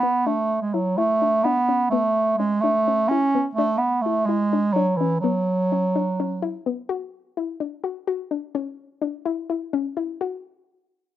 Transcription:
Already playing: B3
0.03 B3
0.26 A3 D4
0.61 G#3
0.74 F#3 E4
0.97 A3 E4
1.22 D4
1.44 B3 D4
1.69 C#4
1.90 A3 B3
2.38 G#3 C#4
2.61 A3 D4
2.88 C#4
3.08 C#4 E4
3.35 B3
3.55 A3 D4
3.78 B3
4.02 A3
4.06 E4
4.26 G#3 E4
4.53 D4
4.73 F#3 D4
4.96 E3
5.01 C#4
5.20 F#3 B3
5.72 C#4
5.95 D4
6.20 C#4
6.42 E4
6.66 B3
6.89 F#4
7.37 E4
7.60 D4
7.84 F#4
8.07 F#4
8.31 D4
8.55 C#4
9.02 D4
9.25 E4
9.50 E4
9.73 C#4
9.97 E4
10.21 F#4

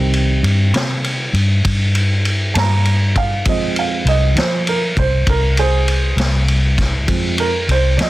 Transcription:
Already playing: C2 D#3 G3 C4
0.14 ride
0.43 G2, ride
0.74 C3, snare, ride
1.04 ride
1.33 G2, ride
1.65 G2, kick, ride
1.95 ride
2.25 ride
2.54 G2 A5, snare, ride
2.58 A#5
2.85 ride
3.16 F5, kick, ride
3.45 F2 F3 G#3 C4 D#5, kick, ride
3.76 F5, ride
4.05 C2 D#5, ride
4.36 F3 C5, snare, ride
4.67 A#4, ride
4.97 C2 C5, kick, ride
5.27 C2 A#4, kick, ride
5.57 G#4 C5, ride
5.88 ride
6.17 C2, snare, ride
6.48 ride
6.78 kick, snare, ride
7.07 F2 F3 G#3 C4, kick, ride
7.38 A#4, ride
7.68 C2 C5, ride
7.97 F3 D5, snare, ride
8.01 D#5

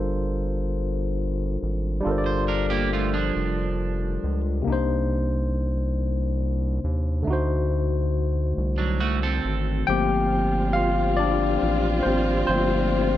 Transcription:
Already playing: G1 G3 D4 F4 A4 A#4 C5
1.63 G#1
2.00 G3 D4
2.05 G1 F4 A4
2.09 A#4 C5
2.18 D5
2.26 C5
2.48 D4 A#4
2.70 A#3 G4
2.93 A3 F4
3.14 F3 D4
3.36 F1
4.24 C#2
4.62 C3 A#3
4.67 C2 D4 D#4
4.72 C5
6.84 D#2
7.22 D3 A3
7.27 D2 D#4 F#4
7.33 C5
8.58 C2
8.78 F#3 D4
9.00 A3 F#4
9.23 C4 A4
9.45 G#1
9.87 G1 F3 G3 A3 A#3 C4 F4 G4 G5
10.73 F4 F5
11.17 D4 D5
11.63 A1
12.03 G#1 C4 C5
12.47 G1 F3 A3 A#3 C4 C5

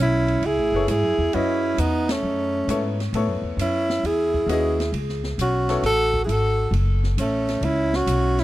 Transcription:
Already playing: B1
0.00 C#4 E4
0.28 ride
0.42 C#2 E4 G#4, ride
0.57 A1
0.72 F#1 B3 E4 A4 C#5
0.88 G#2 E4 G#4, hi-hat pedal, ride
1.02 F#2
1.18 E2
1.33 F#2 C#4 E4 F#4 B4 D#5, ride
1.78 E2 B3 D#4, hi-hat pedal, ride
2.09 A3 C#4, snare, ride
2.23 F#2
2.67 G#2 B3 E4 A4 C#5, hi-hat pedal, ride
3.00 snare, ride
3.13 A2 B3 E4 A4 C#5, ride
3.27 F#2
3.42 E2
3.57 F#2, hi-hat pedal, ride
3.61 C#4 E4
3.90 snare
4.03 E2 E4 G#4, ride
4.34 kick
4.46 D#2 C#4 E4 F#4 B4 D#5, hi-hat pedal, ride
4.52 G#4
4.80 snare, ride
4.92 C#2, ride
5.09 snare
5.24 snare
5.38 B1 C#4 F#4, hi-hat pedal, ride
5.68 B3 E4 A4 C#5, snare, ride
5.82 A1 F#4 A4, snare, ride
6.14 kick
6.24 G#1 E4 G#4
6.29 F#4 A4, hi-hat pedal, ride
6.71 F#1, ride
7.04 snare
7.17 A1 A3 C#4, hi-hat pedal, ride
7.48 snare, ride
7.61 C#2 C#4 E4, ride
7.93 C#4 F#4, snare
8.07 B1, hi-hat pedal, ride
8.38 C#4 E4, snare, ride

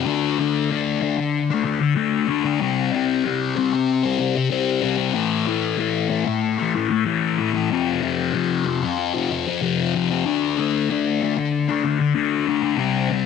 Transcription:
0.05 D3 A3 D4
0.38 D3 A3 D4
0.69 D3 A3 D4
1.01 D3 A3 D4
1.18 muted distorted electric guitar stroke
1.50 A3 D4
1.63 D3 A3 D4
1.81 muted distorted electric guitar stroke
1.96 D3 A3 D4
2.27 D3 A3 D4
2.44 A3 D4
2.60 C3 G3 C4
2.92 C3 G3 C4
3.25 C3 G3 C4
3.55 C3 G3 C4
3.73 muted distorted electric guitar stroke
4.03 G3 C4
4.18 C3 G3 C4
4.36 muted distorted electric guitar stroke
4.50 C3 G3 C4
4.81 C3 G3 C4
4.97 G3 C4
5.13 A2 E3 A3
5.47 A2 E3 A3
5.78 A2 E3 A3
6.09 A2 E3 A3
6.26 muted distorted electric guitar stroke
6.58 E3 A3
6.74 A2 E3 A3
6.89 muted distorted electric guitar stroke
7.05 A2 E3 A3
7.38 A2 E3 A3
7.53 E3 A3
7.71 F2 C3 F3
8.01 F2 C3 F3
8.33 F2 C3 F3
8.65 F2 C3 F3
8.83 muted distorted electric guitar stroke
9.14 C3 F3
9.30 F2 C3 F3
9.47 muted distorted electric guitar stroke
9.62 F2 C3 F3
9.95 F2 C3 F3
10.11 C3 F3
10.25 D3 A3 D4
10.58 D3 A3 D4
10.90 D3 A3 D4
11.22 D3 A3 D4
11.38 muted distorted electric guitar stroke
11.69 A3 D4
11.84 D3 A3 D4
12.00 muted distorted electric guitar stroke
12.15 D3 A3 D4
12.47 D3 A3 D4
12.62 A3 D4
12.77 C3 G3 C4
13.11 C3 G3 C4

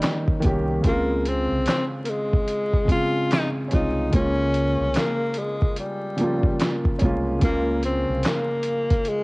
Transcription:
Already playing: D#3 G3 A#3 C#4 D#4
0.02 snare, clap, closed hi-hat
0.28 kick
0.40 D#3 A#3, closed hi-hat
0.44 C2 C#4 G4, kick
0.81 C#2 C#3 G#3, kick, closed hi-hat
0.85 A#3 C4 F4
1.25 C4, closed hi-hat
1.51 C2
1.66 C4, snare, clap, closed hi-hat
2.05 A#3, closed hi-hat
2.10 G#3
2.33 kick
2.48 closed hi-hat
2.73 kick
2.85 C#3 G#3, kick
2.89 C4 F4 G#4, closed hi-hat
3.31 D#4, snare, clap, closed hi-hat
3.68 G#3 C#4, closed hi-hat
3.72 C2 C4 D#4 F4, kick
4.10 C#2 C#3 G#3, kick, closed hi-hat
4.14 A#3 C#4 F4
4.54 closed hi-hat
4.80 C2
4.94 A#3, snare, clap, closed hi-hat
5.34 closed hi-hat
5.38 G#3
5.62 kick
5.76 G3, closed hi-hat
6.16 C#3 F3, closed hi-hat
6.21 A#3 F4
6.43 kick
6.60 snare, clap, closed hi-hat
6.85 kick
6.99 C2 G#3 C#4, kick, closed hi-hat
7.03 A#3 F4
7.39 C#2 C#3 G#3, kick, closed hi-hat
7.43 A#3 F4
7.83 C4, closed hi-hat
8.09 C2
8.23 A#3, snare, clap, closed hi-hat
8.63 closed hi-hat
8.90 kick, closed hi-hat
9.05 G#3, closed hi-hat

